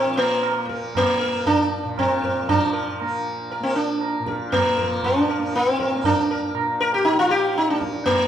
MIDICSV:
0, 0, Header, 1, 4, 480
1, 0, Start_track
1, 0, Tempo, 508906
1, 2346, Time_signature, 7, 2, 24, 8
1, 7805, End_track
2, 0, Start_track
2, 0, Title_t, "Sitar"
2, 0, Program_c, 0, 104
2, 0, Note_on_c, 0, 60, 87
2, 164, Note_on_c, 0, 58, 81
2, 175, Note_off_c, 0, 60, 0
2, 618, Note_off_c, 0, 58, 0
2, 653, Note_on_c, 0, 70, 34
2, 880, Note_off_c, 0, 70, 0
2, 912, Note_on_c, 0, 58, 87
2, 1130, Note_on_c, 0, 70, 34
2, 1359, Note_off_c, 0, 70, 0
2, 1383, Note_on_c, 0, 62, 96
2, 1402, Note_off_c, 0, 58, 0
2, 1871, Note_off_c, 0, 62, 0
2, 1875, Note_on_c, 0, 60, 83
2, 2110, Note_on_c, 0, 70, 34
2, 2332, Note_off_c, 0, 70, 0
2, 2346, Note_off_c, 0, 60, 0
2, 2349, Note_on_c, 0, 62, 86
2, 2576, Note_on_c, 0, 70, 36
2, 2805, Note_off_c, 0, 70, 0
2, 3032, Note_off_c, 0, 62, 0
2, 3315, Note_on_c, 0, 70, 37
2, 3427, Note_on_c, 0, 60, 76
2, 3535, Note_off_c, 0, 70, 0
2, 3538, Note_off_c, 0, 60, 0
2, 3542, Note_on_c, 0, 62, 72
2, 4031, Note_on_c, 0, 70, 38
2, 4108, Note_off_c, 0, 62, 0
2, 4253, Note_off_c, 0, 70, 0
2, 4265, Note_on_c, 0, 58, 82
2, 4508, Note_on_c, 0, 70, 36
2, 4732, Note_off_c, 0, 70, 0
2, 4755, Note_on_c, 0, 62, 75
2, 4761, Note_off_c, 0, 58, 0
2, 4993, Note_on_c, 0, 70, 37
2, 5214, Note_off_c, 0, 70, 0
2, 5235, Note_off_c, 0, 62, 0
2, 5239, Note_on_c, 0, 60, 78
2, 5467, Note_on_c, 0, 70, 38
2, 5690, Note_off_c, 0, 70, 0
2, 5704, Note_off_c, 0, 60, 0
2, 5707, Note_on_c, 0, 62, 84
2, 5950, Note_on_c, 0, 70, 36
2, 6170, Note_off_c, 0, 70, 0
2, 6418, Note_on_c, 0, 70, 85
2, 6445, Note_off_c, 0, 62, 0
2, 6542, Note_off_c, 0, 70, 0
2, 6546, Note_on_c, 0, 67, 89
2, 6646, Note_on_c, 0, 63, 89
2, 6667, Note_off_c, 0, 67, 0
2, 6777, Note_off_c, 0, 63, 0
2, 6782, Note_on_c, 0, 65, 87
2, 6892, Note_on_c, 0, 67, 82
2, 6904, Note_off_c, 0, 65, 0
2, 7142, Note_off_c, 0, 67, 0
2, 7145, Note_on_c, 0, 63, 82
2, 7261, Note_off_c, 0, 63, 0
2, 7265, Note_on_c, 0, 62, 66
2, 7373, Note_off_c, 0, 62, 0
2, 7598, Note_on_c, 0, 58, 83
2, 7805, Note_off_c, 0, 58, 0
2, 7805, End_track
3, 0, Start_track
3, 0, Title_t, "Tanpura"
3, 0, Program_c, 1, 104
3, 0, Note_on_c, 1, 46, 59
3, 0, Note_on_c, 1, 53, 47
3, 0, Note_on_c, 1, 58, 58
3, 55, Note_off_c, 1, 53, 0
3, 55, Note_on_c, 1, 53, 56
3, 619, Note_off_c, 1, 58, 0
3, 619, Note_on_c, 1, 58, 58
3, 1170, Note_off_c, 1, 58, 0
3, 1170, Note_on_c, 1, 58, 58
3, 1729, Note_off_c, 1, 46, 0
3, 1733, Note_on_c, 1, 46, 55
3, 2283, Note_off_c, 1, 53, 0
3, 2287, Note_on_c, 1, 53, 60
3, 2835, Note_off_c, 1, 58, 0
3, 2835, Note_on_c, 1, 58, 54
3, 3397, Note_off_c, 1, 58, 0
3, 3397, Note_on_c, 1, 58, 59
3, 3955, Note_off_c, 1, 46, 0
3, 3958, Note_on_c, 1, 46, 59
3, 4512, Note_off_c, 1, 53, 0
3, 4516, Note_on_c, 1, 53, 62
3, 5078, Note_off_c, 1, 58, 0
3, 5078, Note_on_c, 1, 58, 55
3, 5613, Note_off_c, 1, 58, 0
3, 5613, Note_on_c, 1, 58, 63
3, 6163, Note_off_c, 1, 46, 0
3, 6167, Note_on_c, 1, 46, 50
3, 6729, Note_off_c, 1, 53, 0
3, 6732, Note_on_c, 1, 53, 57
3, 7279, Note_off_c, 1, 58, 0
3, 7279, Note_on_c, 1, 58, 55
3, 7805, Note_off_c, 1, 46, 0
3, 7805, Note_off_c, 1, 53, 0
3, 7805, Note_off_c, 1, 58, 0
3, 7805, End_track
4, 0, Start_track
4, 0, Title_t, "Tabla"
4, 171, Note_on_c, 9, 60, 57
4, 265, Note_off_c, 9, 60, 0
4, 407, Note_on_c, 9, 60, 71
4, 501, Note_off_c, 9, 60, 0
4, 653, Note_on_c, 9, 37, 53
4, 747, Note_off_c, 9, 37, 0
4, 898, Note_on_c, 9, 60, 73
4, 898, Note_on_c, 9, 64, 72
4, 992, Note_off_c, 9, 60, 0
4, 992, Note_off_c, 9, 64, 0
4, 1379, Note_on_c, 9, 63, 79
4, 1379, Note_on_c, 9, 64, 72
4, 1473, Note_off_c, 9, 63, 0
4, 1473, Note_off_c, 9, 64, 0
4, 1866, Note_on_c, 9, 60, 66
4, 1866, Note_on_c, 9, 64, 59
4, 1960, Note_off_c, 9, 60, 0
4, 1960, Note_off_c, 9, 64, 0
4, 2103, Note_on_c, 9, 64, 48
4, 2197, Note_off_c, 9, 64, 0
4, 2347, Note_on_c, 9, 63, 94
4, 2347, Note_on_c, 9, 64, 89
4, 2442, Note_off_c, 9, 63, 0
4, 2442, Note_off_c, 9, 64, 0
4, 2829, Note_on_c, 9, 60, 73
4, 2923, Note_off_c, 9, 60, 0
4, 3305, Note_on_c, 9, 63, 71
4, 3399, Note_off_c, 9, 63, 0
4, 3784, Note_on_c, 9, 60, 67
4, 3879, Note_off_c, 9, 60, 0
4, 4023, Note_on_c, 9, 37, 64
4, 4117, Note_off_c, 9, 37, 0
4, 4266, Note_on_c, 9, 60, 75
4, 4266, Note_on_c, 9, 64, 70
4, 4360, Note_off_c, 9, 60, 0
4, 4360, Note_off_c, 9, 64, 0
4, 4506, Note_on_c, 9, 64, 49
4, 4600, Note_off_c, 9, 64, 0
4, 4741, Note_on_c, 9, 63, 77
4, 4741, Note_on_c, 9, 64, 72
4, 4836, Note_off_c, 9, 63, 0
4, 4836, Note_off_c, 9, 64, 0
4, 5214, Note_on_c, 9, 62, 70
4, 5309, Note_off_c, 9, 62, 0
4, 5338, Note_on_c, 9, 62, 56
4, 5433, Note_off_c, 9, 62, 0
4, 5460, Note_on_c, 9, 37, 56
4, 5554, Note_off_c, 9, 37, 0
4, 5585, Note_on_c, 9, 62, 59
4, 5679, Note_off_c, 9, 62, 0
4, 5696, Note_on_c, 9, 63, 100
4, 5696, Note_on_c, 9, 64, 86
4, 5790, Note_off_c, 9, 63, 0
4, 5790, Note_off_c, 9, 64, 0
4, 6177, Note_on_c, 9, 60, 77
4, 6271, Note_off_c, 9, 60, 0
4, 6654, Note_on_c, 9, 63, 72
4, 6748, Note_off_c, 9, 63, 0
4, 7133, Note_on_c, 9, 62, 71
4, 7227, Note_off_c, 9, 62, 0
4, 7255, Note_on_c, 9, 62, 55
4, 7349, Note_off_c, 9, 62, 0
4, 7369, Note_on_c, 9, 37, 61
4, 7463, Note_off_c, 9, 37, 0
4, 7485, Note_on_c, 9, 62, 61
4, 7579, Note_off_c, 9, 62, 0
4, 7602, Note_on_c, 9, 60, 72
4, 7602, Note_on_c, 9, 64, 68
4, 7696, Note_off_c, 9, 60, 0
4, 7696, Note_off_c, 9, 64, 0
4, 7805, End_track
0, 0, End_of_file